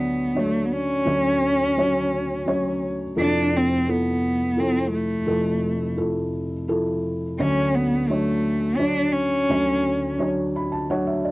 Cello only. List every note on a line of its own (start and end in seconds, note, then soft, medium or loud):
0.00 0.41 B3 medium
0.39 0.67 A3 medium
0.66 0.74 B3 medium
0.73 2.82 C#4 medium
3.20 3.58 D4 medium
3.57 3.92 C4 medium
3.90 4.61 B3 medium
4.60 4.92 C4 medium
4.93 5.94 A3 medium
7.40 7.76 C#4 medium
7.75 8.10 B3 medium
8.09 8.79 A3 medium
8.78 9.14 D4 medium
9.13 10.19 C#4 medium